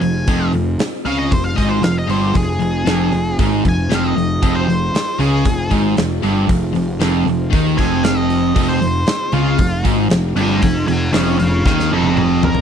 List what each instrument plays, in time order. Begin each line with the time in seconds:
Already playing: string machine C4 F4 G#4 F5
0.01 picked electric bass F1, overdriven electric guitar F2, lead electric guitar G#5, open hi-hat
0.27 picked electric bass F1, overdriven electric guitar F2, string machine C4 F4 G#4 F5, kick, open hi-hat
0.53 picked electric bass F1, overdriven electric guitar F2, open hi-hat
0.79 muted overdriven electric guitar stroke, muted picked electric bass stroke, snare, open hi-hat
1.05 picked electric bass C#2, overdriven electric guitar C#3, lead electric guitar F5, open hi-hat
1.19 lead electric guitar D#5
1.31 picked electric bass F1, overdriven electric guitar F2, lead electric guitar C5, kick, open hi-hat
1.44 lead electric guitar F5
1.55 picked electric bass G#1, overdriven electric guitar G#2, lead electric guitar D#5, kick, open hi-hat
1.69 lead electric guitar C5
1.82 picked electric bass F1, overdriven electric guitar F2, lead electric guitar F5, snare, open hi-hat
1.99 lead electric guitar D#5
2.07 picked electric bass G1, overdriven electric guitar G2, lead electric guitar C5, open hi-hat
2.34 picked electric bass F1, overdriven electric guitar F2, lead electric guitar G#4, kick, open hi-hat
2.59 picked electric bass F1, overdriven electric guitar F2, open hi-hat
2.85 picked electric bass F1, overdriven electric guitar F2, snare, open hi-hat
3.12 picked electric bass F1, overdriven electric guitar F2, open hi-hat
3.39 picked electric bass G#1, overdriven electric guitar G#2, kick, open hi-hat
3.65 picked electric bass F1, overdriven electric guitar F2, lead electric guitar G#5, kick, open hi-hat
3.89 picked electric bass F1, overdriven electric guitar F2, snare, open hi-hat
3.94 lead electric guitar F5
4.07 lead electric guitar D#5
4.16 picked electric bass F1, overdriven electric guitar F2, open hi-hat
4.41 picked electric bass F1, overdriven electric guitar F2, string machine F4 G#4 C5 F5, kick, open hi-hat
4.56 lead electric guitar C5
4.68 picked electric bass F1, overdriven electric guitar F2, open hi-hat
4.94 muted picked electric bass stroke, muted overdriven electric guitar stroke, snare, open hi-hat
5.19 picked electric bass C#2, overdriven electric guitar C#3, lead electric guitar G#4, open hi-hat
5.45 picked electric bass F1, overdriven electric guitar F2, kick, open hi-hat
5.70 picked electric bass G#1, overdriven electric guitar G#2, kick, open hi-hat
5.97 picked electric bass F1, overdriven electric guitar F2, snare, open hi-hat
6.22 picked electric bass G1, overdriven electric guitar G2, open hi-hat
6.47 picked electric bass F1, overdriven electric guitar F2, kick, open hi-hat
6.73 picked electric bass F1, overdriven electric guitar F2, open hi-hat
7.00 picked electric bass F1, overdriven electric guitar F2, snare, open hi-hat
7.25 picked electric bass F1, overdriven electric guitar F2, open hi-hat
7.29 overdriven electric guitar F2
7.50 picked electric bass D#2, overdriven electric guitar D#3, kick, open hi-hat
7.54 overdriven electric guitar D#3
7.77 picked electric bass F1, overdriven electric guitar F2, lead electric guitar G#5, kick, open hi-hat
8.04 lead electric guitar F5, snare, open hi-hat
8.17 lead electric guitar D#5
8.30 open hi-hat
8.54 picked electric bass F1, overdriven electric guitar F2, string machine C4 F4 G#4 F5, kick, open hi-hat
8.69 lead electric guitar C5
8.82 picked electric bass F1, overdriven electric guitar F2, open hi-hat
9.07 muted overdriven electric guitar stroke, muted picked electric bass stroke, snare, open hi-hat
9.32 picked electric bass C#2, overdriven electric guitar C#3, lead electric guitar F4, open hi-hat
9.58 picked electric bass F1, overdriven electric guitar F2, kick, open hi-hat
9.85 picked electric bass G#1, overdriven electric guitar G#2, kick, open hi-hat
10.10 picked electric bass F1, overdriven electric guitar F2, snare, open hi-hat
10.36 picked electric bass G1, overdriven electric guitar G2, lead electric guitar C5 G#5, open hi-hat
10.62 picked electric bass F1, overdriven electric guitar F2, lead electric guitar C5 G#5, kick, open hi-hat
10.87 picked electric bass F1, overdriven electric guitar F2, lead electric guitar C5 G#5, open hi-hat
11.12 picked electric bass F1, overdriven electric guitar F2, lead electric guitar G#4 F5, snare, open hi-hat
11.39 picked electric bass F1, overdriven electric guitar F2, lead electric guitar G#4 F5, open hi-hat
11.66 picked electric bass D#2, overdriven electric guitar D#3, lead electric guitar G#4 F5, kick, snare
11.80 snare
11.91 picked electric bass F1, overdriven electric guitar F2, lead electric guitar C5 D#5
12.03 high tom
12.17 lead electric guitar C5 D#5, mid tom
12.43 lead electric guitar A#4, floor tom
12.55 floor tom